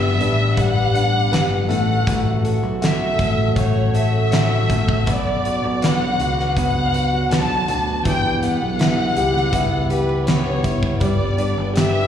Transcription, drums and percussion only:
0.21 closed hi-hat medium
0.57 kick medium
0.57 closed hi-hat medium
0.95 closed hi-hat medium
1.33 snare loud
1.33 closed hi-hat medium
1.71 closed hi-hat medium
2.07 kick medium
2.07 closed hi-hat medium
2.45 closed hi-hat medium
2.82 snare loud
2.82 closed hi-hat medium
3.19 kick medium
3.19 closed hi-hat medium
3.56 kick medium
3.56 closed hi-hat medium
3.95 closed hi-hat medium
4.32 snare loud
4.32 closed hi-hat medium
4.70 kick medium
4.70 closed hi-hat medium
4.89 kick medium
5.07 kick loud
5.07 closed hi-hat loud
5.45 closed hi-hat medium
5.82 snare loud
5.82 closed hi-hat medium
6.20 closed hi-hat medium
6.40 snare soft
6.57 kick medium
6.57 closed hi-hat medium
6.94 closed hi-hat medium
7.31 snare loud
7.31 closed hi-hat medium
7.68 closed hi-hat medium
8.05 kick loud
8.05 closed hi-hat loud
8.43 closed hi-hat medium
8.79 snare loud
8.79 closed hi-hat medium
9.17 closed hi-hat medium
9.37 snare soft
9.53 kick medium
9.53 closed hi-hat medium
9.90 closed hi-hat medium
10.27 snare loud
10.27 closed hi-hat medium
10.64 kick medium
10.64 closed hi-hat medium
10.83 kick medium
11.01 kick loud
11.01 closed hi-hat medium
11.38 closed hi-hat medium
11.76 snare loud
11.76 closed hi-hat medium

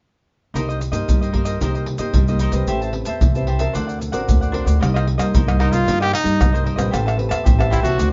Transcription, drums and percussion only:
0.56 pandeiro medium
0.56 maracas medium
0.56 surdo soft
0.70 pandeiro soft
0.70 maracas soft
0.81 pandeiro medium
0.81 maracas medium
0.93 pandeiro medium
0.93 maracas medium
1.09 pandeiro medium
1.09 maracas medium
1.09 surdo medium
1.22 pandeiro soft
1.22 maracas soft
1.34 pandeiro medium
1.34 surdo medium
1.45 pandeiro medium
1.45 maracas medium
1.61 pandeiro medium
1.61 maracas medium
1.61 surdo medium
1.75 pandeiro soft
1.75 maracas soft
1.86 pandeiro medium
1.98 pandeiro medium
1.98 maracas medium
2.14 pandeiro medium
2.14 maracas medium
2.14 surdo medium
2.28 pandeiro soft
2.28 maracas soft
2.39 pandeiro medium
2.39 maracas medium
2.52 pandeiro medium
2.52 maracas medium
2.67 pandeiro medium
2.67 maracas medium
2.67 surdo soft
2.82 pandeiro soft
2.82 maracas soft
2.93 pandeiro medium
3.05 pandeiro medium
3.05 maracas medium
3.21 pandeiro medium
3.21 maracas medium
3.21 surdo loud
3.35 pandeiro soft
3.35 maracas soft
3.47 pandeiro medium
3.59 pandeiro medium
3.59 maracas medium
3.75 pandeiro medium
3.75 maracas medium
3.75 surdo medium
3.89 pandeiro soft
3.89 maracas soft
4.01 pandeiro medium
4.01 maracas medium
4.13 pandeiro medium
4.13 maracas medium
4.29 pandeiro medium
4.29 maracas medium
4.29 surdo medium
4.42 pandeiro soft
4.42 maracas soft
4.54 pandeiro medium
4.67 pandeiro medium
4.67 maracas medium
4.82 pandeiro medium
4.82 tamborim medium
4.82 maracas medium
4.82 surdo medium
4.96 pandeiro soft
4.96 tamborim medium
4.96 maracas soft
5.07 pandeiro medium
5.19 pandeiro medium
5.19 tamborim medium
5.19 maracas medium
5.34 pandeiro medium
5.34 maracas medium
5.34 surdo loud
5.48 pandeiro soft
5.48 tamborim medium
5.48 maracas soft
5.60 pandeiro medium
5.60 tamborim medium
5.73 pandeiro medium
5.73 maracas medium
5.88 pandeiro medium
5.88 maracas medium
5.88 surdo medium
6.02 pandeiro soft
6.02 tamborim medium
6.02 maracas soft
6.13 pandeiro medium
6.13 tamborim medium
6.26 pandeiro medium
6.26 maracas medium
6.41 pandeiro medium
6.41 tamborim medium
6.41 maracas medium
6.41 surdo medium
6.55 pandeiro soft
6.55 maracas soft
6.66 pandeiro medium
6.79 pandeiro medium
6.79 tamborim medium
6.79 maracas medium
6.94 pandeiro medium
6.94 tamborim medium
6.94 maracas medium
6.94 surdo medium
7.08 pandeiro soft
7.08 tamborim medium
7.08 maracas soft
7.19 pandeiro medium
7.31 pandeiro medium
7.31 tamborim medium
7.31 maracas medium
7.46 pandeiro medium
7.46 maracas medium
7.46 surdo loud
7.61 pandeiro soft
7.61 tamborim medium
7.61 maracas soft
7.73 pandeiro medium
7.73 tamborim medium
7.73 maracas medium
7.73 surdo medium
7.85 pandeiro medium
7.85 maracas medium
7.99 pandeiro medium
7.99 maracas medium
7.99 surdo medium

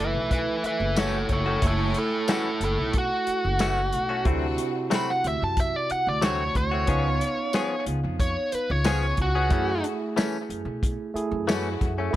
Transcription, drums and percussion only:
0.31 kick medium
0.31 closed hi-hat medium
0.64 closed hi-hat medium
0.96 snare loud
0.96 closed hi-hat medium
0.96 tambourine loud
1.29 kick medium
1.29 closed hi-hat medium
1.62 kick loud
1.62 closed hi-hat medium
1.94 closed hi-hat medium
2.28 snare loud
2.28 closed hi-hat medium
2.28 tambourine loud
2.61 closed hi-hat medium
2.93 kick medium
2.93 closed hi-hat medium
3.27 closed hi-hat medium
3.59 snare loud
3.59 closed hi-hat medium
3.59 tambourine loud
3.93 closed hi-hat medium
4.25 kick loud
4.25 closed hi-hat medium
4.58 closed hi-hat medium
4.91 snare loud
4.91 closed hi-hat medium
4.91 tambourine loud
5.24 closed hi-hat medium
5.57 kick medium
5.57 closed hi-hat medium
5.90 closed hi-hat medium
6.22 snare loud
6.22 closed hi-hat medium
6.22 tambourine loud
6.55 kick medium
6.55 closed hi-hat medium
6.87 kick loud
6.87 closed hi-hat medium
7.21 closed hi-hat medium
7.53 snare loud
7.53 closed hi-hat medium
7.53 tambourine medium
7.86 closed hi-hat medium
8.20 kick medium
8.20 closed hi-hat medium
8.52 closed hi-hat medium
8.84 snare loud
8.84 closed hi-hat medium
8.84 tambourine loud
9.17 kick medium
9.17 closed hi-hat medium
9.50 kick loud
9.50 closed hi-hat medium
9.84 closed hi-hat medium
10.17 snare loud
10.17 closed hi-hat medium
10.17 tambourine loud
10.50 closed hi-hat medium
10.83 kick medium
10.83 closed hi-hat medium
11.16 closed hi-hat medium
11.49 snare loud
11.49 closed hi-hat medium
11.49 tambourine loud
11.81 kick medium
11.81 snare soft
11.81 closed hi-hat medium

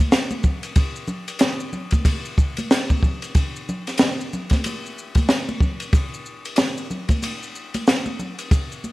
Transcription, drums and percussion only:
0.00 high conga medium
0.00 maracas soft
0.12 snare loud
0.12 hi-hat pedal medium
0.12 ride medium
0.12 maracas medium
0.31 high conga medium
0.31 maracas soft
0.43 kick medium
0.43 low conga medium
0.43 maracas soft
0.63 ride soft
0.63 maracas soft
0.76 kick loud
0.76 ride medium
0.76 maracas soft
0.96 maracas soft
1.08 low conga medium
1.08 maracas soft
1.28 ride soft
1.28 maracas soft
1.39 snare loud
1.39 hi-hat pedal soft
1.39 ride medium
1.39 maracas medium
1.60 maracas soft
1.73 low conga medium
1.73 maracas soft
1.91 kick medium
1.91 ride soft
1.91 high conga medium
1.91 maracas soft
2.05 kick loud
2.05 ride medium
2.05 high conga medium
2.05 maracas medium
2.25 maracas soft
2.38 kick loud
2.38 maracas soft
2.57 ride medium
2.57 high conga medium
2.57 maracas soft
2.71 snare loud
2.71 hi-hat pedal medium
2.71 ride medium
2.71 maracas medium
2.90 kick medium
2.90 high conga medium
2.90 maracas soft
3.03 kick medium
3.03 low conga medium
3.03 maracas soft
3.22 ride soft
3.22 maracas soft
3.35 kick loud
3.35 ride medium
3.35 maracas medium
3.56 maracas soft
3.69 low conga medium
3.69 maracas soft
3.87 snare soft
3.87 ride soft
3.87 maracas soft
3.98 snare loud
3.98 hi-hat pedal medium
3.98 ride medium
3.98 maracas medium
4.20 maracas soft
4.33 low conga medium
4.33 maracas soft
4.50 kick medium
4.50 snare soft
4.50 ride medium
4.50 high conga medium
4.50 maracas soft
4.64 ride medium
4.64 high conga soft
4.64 maracas medium
4.86 maracas soft
4.98 maracas soft
5.15 kick medium
5.15 ride medium
5.15 high conga medium
5.15 maracas soft
5.29 snare loud
5.29 hi-hat pedal medium
5.29 ride medium
5.29 maracas medium
5.49 high conga medium
5.49 maracas soft
5.60 kick medium
5.60 low conga medium
5.60 maracas soft
5.80 ride soft
5.80 maracas soft
5.93 kick loud
5.93 ride medium
5.93 maracas medium
6.14 maracas soft
6.26 maracas soft
6.45 ride medium
6.45 maracas soft
6.56 snare loud
6.56 hi-hat pedal soft
6.56 ride medium
6.56 maracas medium
6.77 maracas soft
6.91 low conga medium
6.91 maracas soft
7.09 kick medium
7.09 ride soft
7.09 high conga medium
7.09 maracas soft
7.23 ride medium
7.23 high conga soft
7.23 maracas medium
7.43 maracas soft
7.55 maracas soft
7.74 ride medium
7.74 high conga medium
7.74 maracas soft
7.87 snare loud
7.87 hi-hat pedal medium
7.87 ride medium
7.87 maracas medium
8.06 high conga medium
8.06 maracas soft
8.19 low conga medium
8.19 maracas soft
8.38 ride medium
8.38 maracas soft
8.51 kick loud
8.51 ride medium
8.51 maracas medium
8.72 maracas soft
8.84 high conga soft
8.84 maracas soft

